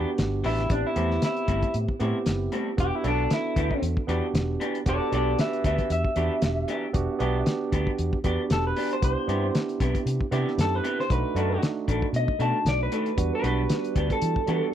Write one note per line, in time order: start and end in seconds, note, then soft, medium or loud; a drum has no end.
0.00 0.64 B3 medium
0.00 0.65 D4 medium
0.00 0.65 F#4 medium
0.00 0.66 G4 medium
0.18 0.42 G1 medium
0.18 snare loud
0.18 closed hi-hat medium
0.44 0.68 A1 medium
0.44 0.61 E3 medium
0.44 0.61 B3 medium
0.44 0.61 D4 medium
0.44 0.70 E4 loud
0.44 0.61 G4 medium
0.44 open hi-hat medium
0.58 snare soft
0.58 closed hi-hat soft
0.69 0.82 A1 loud
0.69 0.94 B3 medium
0.69 0.94 C4 medium
0.69 0.85 D4 medium
0.69 0.95 E4 medium
0.69 0.95 G4 medium
0.69 kick loud
0.69 closed hi-hat medium
0.87 1.22 E4 medium
0.95 1.18 E2 medium
0.95 1.13 A2 medium
0.95 1.13 G3 medium
0.95 1.93 B3 medium
0.95 1.94 C4 medium
0.95 1.13 C4 medium
0.95 1.94 E4 medium
0.95 1.14 E4 medium
0.95 1.94 G4 medium
0.95 closed hi-hat medium
1.11 snare soft
1.22 1.74 E4 loud
1.22 snare loud
1.22 closed hi-hat medium
1.37 closed hi-hat soft
1.48 1.60 G1 medium
1.48 1.65 A2 medium
1.48 1.65 G3 medium
1.48 1.65 C4 medium
1.48 1.66 E4 medium
1.48 kick medium
1.48 closed hi-hat medium
1.62 kick medium
1.62 closed hi-hat soft
1.74 1.86 A2 loud
1.74 closed hi-hat medium
1.89 kick medium
2.00 2.17 A2 medium
2.00 2.12 A2 medium
2.00 2.17 G3 medium
2.00 2.73 B3 medium
2.00 2.74 C4 medium
2.00 2.17 C4 loud
2.00 2.74 E4 medium
2.00 2.18 E4 loud
2.00 2.74 G4 medium
2.00 closed hi-hat medium
2.26 2.48 F#1 medium
2.26 snare loud
2.26 closed hi-hat medium
2.52 2.69 A2 medium
2.52 2.69 G3 medium
2.52 2.69 C4 medium
2.52 2.70 E4 loud
2.52 closed hi-hat medium
2.77 2.90 E1 medium
2.77 3.02 B3 medium
2.77 3.02 D4 medium
2.77 3.03 F#4 medium
2.77 3.03 G4 medium
2.77 2.95 G4 loud
2.77 kick loud
2.77 closed hi-hat medium
2.95 3.05 E4 medium
3.03 3.26 B1 loud
3.03 3.21 E3 medium
3.03 4.01 B3 medium
3.03 3.21 B3 medium
3.03 4.01 D4 medium
3.03 3.22 D4 medium
3.03 4.02 F#4 medium
3.03 3.22 G4 medium
3.03 4.02 A4 medium
3.03 closed hi-hat medium
3.08 3.31 D4 loud
3.30 3.82 E4 loud
3.30 snare loud
3.30 closed hi-hat medium
3.56 3.68 D2 medium
3.56 3.73 E3 medium
3.56 3.73 B3 medium
3.56 3.74 D4 medium
3.56 3.74 G4 medium
3.56 kick medium
3.56 closed hi-hat medium
3.71 kick medium
3.82 3.94 E2 medium
3.82 closed hi-hat medium
3.97 kick medium
4.07 4.20 E2 medium
4.07 4.25 E3 loud
4.07 4.81 B3 medium
4.07 4.25 B3 loud
4.07 4.81 D4 medium
4.07 4.26 D4 loud
4.07 4.81 F#4 medium
4.07 4.82 G4 medium
4.07 4.26 G4 loud
4.07 closed hi-hat medium
4.34 4.55 E1 medium
4.34 snare loud
4.34 closed hi-hat medium
4.60 4.77 E3 medium
4.60 4.77 B3 medium
4.60 4.78 D4 loud
4.60 4.78 G4 loud
4.60 closed hi-hat medium
4.75 closed hi-hat soft
4.85 4.98 E1 loud
4.85 5.09 B3 medium
4.85 5.10 D4 medium
4.85 5.11 F#4 medium
4.85 5.11 G4 medium
4.85 5.12 A4 medium
4.85 5.13 D5 loud
4.85 kick loud
4.85 closed hi-hat medium
5.11 5.34 B1 medium
5.11 5.29 E3 medium
5.11 6.09 B3 medium
5.11 5.29 B3 medium
5.11 6.10 D4 medium
5.11 5.30 D4 medium
5.11 6.10 F#4 medium
5.11 6.10 G4 medium
5.11 5.30 G4 medium
5.11 5.37 A4 medium
5.11 closed hi-hat medium
5.15 5.39 D5 medium
5.39 5.63 B4 medium
5.39 5.65 E5 medium
5.39 snare loud
5.39 closed hi-hat medium
5.53 closed hi-hat soft
5.64 5.76 D2 loud
5.64 5.81 E3 medium
5.64 5.81 B3 medium
5.64 5.82 D4 medium
5.64 5.82 G4 medium
5.64 5.89 B4 medium
5.64 5.91 E5 medium
5.64 kick medium
5.64 closed hi-hat medium
5.78 kick medium
5.78 closed hi-hat soft
5.90 6.02 E2 loud
5.90 7.43 E5 medium
5.90 closed hi-hat medium
6.05 kick medium
6.15 6.28 E2 medium
6.15 6.33 E3 medium
6.15 6.89 B3 medium
6.15 6.33 B3 medium
6.15 6.89 D4 medium
6.15 6.34 D4 medium
6.15 6.90 F#4 medium
6.15 6.90 G4 medium
6.15 6.34 G4 medium
6.15 closed hi-hat medium
6.42 6.64 E1 medium
6.42 snare loud
6.42 closed hi-hat medium
6.68 6.85 E3 medium
6.68 6.85 B3 medium
6.68 6.86 D4 loud
6.68 6.86 G4 loud
6.68 closed hi-hat medium
6.93 7.06 E1 loud
6.93 7.18 B3 medium
6.93 7.18 D4 medium
6.93 7.19 F#4 medium
6.93 7.19 G4 medium
6.93 kick loud
6.93 closed hi-hat medium
7.19 7.42 B1 medium
7.19 7.37 E3 medium
7.19 8.17 B3 medium
7.19 7.37 B3 medium
7.19 8.17 D4 medium
7.19 7.38 D4 loud
7.19 8.18 F#4 medium
7.19 8.18 G4 medium
7.19 7.38 G4 medium
7.19 closed hi-hat medium
7.46 snare loud
7.46 closed hi-hat medium
7.72 7.84 D2 medium
7.72 7.89 E3 medium
7.72 7.89 B3 medium
7.72 7.90 D4 medium
7.72 7.90 G4 medium
7.72 kick medium
7.72 closed hi-hat medium
7.87 kick medium
7.98 8.11 E2 medium
7.98 closed hi-hat medium
8.13 kick medium
8.24 8.36 E2 medium
8.24 8.41 E3 medium
8.24 8.97 B3 medium
8.24 8.41 B3 loud
8.24 8.97 D4 medium
8.24 8.42 D4 loud
8.24 8.98 F#4 medium
8.24 8.98 G4 medium
8.24 8.42 G4 medium
8.24 kick medium
8.24 closed hi-hat medium
8.50 8.72 E1 medium
8.50 8.65 A4 loud
8.50 snare loud
8.50 closed hi-hat medium
8.67 8.91 B4 medium
8.76 8.93 E3 medium
8.76 8.93 B3 medium
8.76 8.94 D4 medium
8.76 8.94 G4 medium
8.76 open hi-hat medium
8.91 9.03 C5 medium
8.91 closed hi-hat soft
9.02 9.14 C2 loud
9.02 9.26 B3 medium
9.02 9.26 D4 medium
9.02 9.27 E4 medium
9.02 9.27 G4 medium
9.02 9.54 C5 medium
9.02 kick loud
9.02 closed hi-hat medium
9.27 9.49 G2 medium
9.27 9.45 C3 medium
9.27 10.25 B3 medium
9.27 9.45 B3 medium
9.27 10.25 D4 medium
9.27 10.26 E4 medium
9.27 9.46 E4 medium
9.27 10.26 G4 medium
9.27 9.46 G4 medium
9.27 closed hi-hat medium
9.55 snare loud
9.55 closed hi-hat medium
9.69 closed hi-hat soft
9.80 9.92 B1 medium
9.80 9.97 C3 medium
9.80 9.97 B3 medium
9.80 9.97 E4 medium
9.80 9.98 G4 medium
9.80 kick medium
9.80 closed hi-hat medium
9.95 kick medium
9.95 closed hi-hat soft
10.06 10.18 C3 loud
10.06 closed hi-hat medium
10.21 kick medium
10.31 10.44 C3 medium
10.31 10.49 C3 loud
10.31 11.05 B3 medium
10.31 10.49 B3 loud
10.31 11.05 D4 medium
10.31 11.05 E4 medium
10.31 10.49 E4 loud
10.31 11.06 G4 medium
10.31 10.50 G4 loud
10.31 snare soft
10.31 closed hi-hat medium
10.48 snare soft
10.58 10.79 F#2 medium
10.58 10.75 A4 loud
10.58 snare loud
10.58 closed hi-hat medium
10.75 10.99 B4 medium
10.84 11.01 C3 medium
10.84 11.01 B3 medium
10.84 11.01 E4 medium
10.84 11.01 G4 medium
10.84 closed hi-hat medium
11.00 11.11 C5 medium
11.00 snare soft
11.09 11.22 B1 loud
11.09 11.34 A3 medium
11.09 11.34 D4 medium
11.09 11.35 D#4 medium
11.09 11.35 F#4 medium
11.09 11.62 B4 loud
11.09 kick loud
11.09 closed hi-hat medium
11.35 11.57 F#2 medium
11.35 11.53 B2 medium
11.35 11.53 D#3 medium
11.35 12.33 A3 medium
11.35 11.53 A3 medium
11.35 12.33 D4 medium
11.35 11.54 D4 medium
11.35 12.34 D#4 medium
11.35 12.34 F#4 medium
11.35 closed hi-hat medium
11.63 snare loud
11.63 closed hi-hat medium
11.88 12.00 A1 medium
11.88 12.05 B2 medium
11.88 12.05 D#3 medium
11.88 12.05 A3 medium
11.88 12.06 D4 medium
11.88 kick medium
11.88 closed hi-hat medium
12.02 kick medium
12.13 12.25 B2 loud
12.13 12.40 D#5 loud
12.13 closed hi-hat medium
12.28 kick medium
12.38 12.52 B2 medium
12.38 12.57 B2 medium
12.38 12.57 D#3 medium
12.38 13.12 A3 medium
12.38 12.57 A3 medium
12.38 13.13 D4 medium
12.38 12.57 D4 medium
12.38 13.13 D#4 medium
12.38 13.13 F#4 medium
12.38 12.66 A5 medium
12.38 closed hi-hat medium
12.65 12.87 B1 medium
12.65 12.81 D5 loud
12.65 snare loud
12.65 closed hi-hat medium
12.83 13.32 B4 loud
12.92 13.09 B2 medium
12.92 13.09 D#3 medium
12.92 13.09 A3 medium
12.92 13.10 D4 medium
12.92 closed hi-hat medium
13.06 closed hi-hat soft
13.17 13.30 E2 loud
13.17 13.41 G3 medium
13.17 13.42 B3 medium
13.17 13.42 D4 medium
13.17 13.43 F#4 medium
13.17 kick loud
13.17 closed hi-hat medium
13.35 14.09 B4 medium
13.42 13.65 B1 loud
13.42 13.61 E3 medium
13.42 14.41 G3 medium
13.42 14.41 B3 medium
13.42 13.61 B3 medium
13.42 14.41 D4 medium
13.42 13.61 D4 medium
13.42 14.42 F#4 medium
13.42 13.61 G4 loud
13.42 closed hi-hat medium
13.70 snare loud
13.70 closed hi-hat medium
13.84 closed hi-hat soft
13.96 14.08 D2 loud
13.96 14.13 E3 medium
13.96 14.13 B3 medium
13.96 14.13 D4 medium
13.96 14.13 G4 medium
13.96 kick medium
13.96 closed hi-hat medium
14.10 14.73 A4 loud
14.10 kick medium
14.10 closed hi-hat soft
14.22 14.34 E3 loud
14.22 closed hi-hat loud
14.36 kick medium
14.46 14.65 E3 medium
14.46 14.60 E3 medium
14.46 14.74 G3 medium
14.46 14.74 B3 medium
14.46 14.65 B3 medium
14.46 14.74 D4 medium
14.46 14.65 D4 loud
14.46 14.74 F#4 medium
14.46 14.65 G4 loud
14.46 closed hi-hat medium